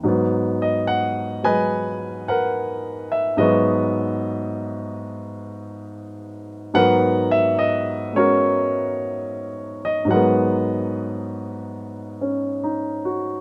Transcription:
0.03 G#2 F#3
0.08 B3
0.62 D#5
0.87 F#5
1.44 F#3 G#3 B4 D#5 G#5
2.28 A#4 B4 F#5
3.12 E5
3.37 G#2 F#3 G#3 F#4 B4 D#5
3.42 B3
6.74 G#2 F#3 B3 A#4 B4 F#5
7.31 E5
7.59 D#5
8.13 G#3 B3 C#4 C#5
8.17 F#4 A#4
9.85 D#5
10.05 G#2 F#3
10.11 G#3 A#4 B4 F#5
10.16 B3
12.21 C#4
12.64 D#4
13.05 F#4

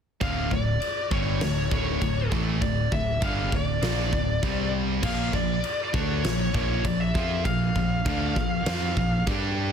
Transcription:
0.21 D1 D2 A2 D3 F5, kick, china
0.51 D1 D2 A2 D5, kick
0.82 china
1.11 G1 G2 D3 G3 C#5, kick
1.41 D1 D2 A2, snare, china
1.71 D1 D2 A2 D3 C#5, kick
2.01 D1 D2 A2, kick, china
2.31 A1 A2 E3 A3, kick
2.62 D1 D2 A2 D5, kick, china
2.92 D1 D2 A2 E5, kick
3.22 G1 G2 D3 G3 F5, kick, china
3.52 D1 D2 A2 D5, kick
3.82 A#1 A#2 F3 A#3, snare, china
4.13 D1 D2 A2, kick
4.43 C2 C3 G3 C4, kick, china
5.03 A#1 A#2 F3 A#3 F5, kick, china, crash
5.33 A#1 A#2 F3 D5, kick
5.64 china
5.94 D2 D3 A3 D4 C#5, kick
6.24 A#1 A#2 F3, snare, china
6.54 A#1 A#2 F3 A#3 C#5, kick
6.85 A#1 A#2 F3 D5, kick, china
7.00 E5
7.15 F2 F3 C4 F4, kick
7.45 A#1 A#2 F3 F5, kick, china
7.76 A#1 A#2 F3, kick
8.06 D2 D3 A3 D4, kick, china
8.36 A#1 A#2 F3, kick
8.66 F2 F3 C4 F4, snare, china
8.97 A#1 A#2 F3, kick
9.27 G2 G3 D4 G4, kick, china

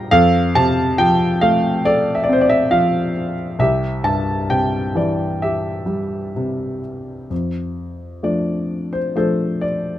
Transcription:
Already playing: G3 F4 D5 F5 G5 A#5
0.11 F2 A4 F5
0.55 C3 A5
0.98 F3 G5
1.41 A3 F5
1.85 A4 D5
2.15 E5
2.23 D5
2.29 C4 C5
2.41 D5
2.49 E5
2.71 F3 F5
3.59 C2 G4 E5
4.04 G2 A5
4.50 C3 G5
4.95 E3 D5
5.42 G4 E5
5.86 G3
6.36 C3
7.30 F2
8.23 F3 A3 D4 D5
8.93 C5
9.15 F3 A3 D4 A4 C5
9.61 D5

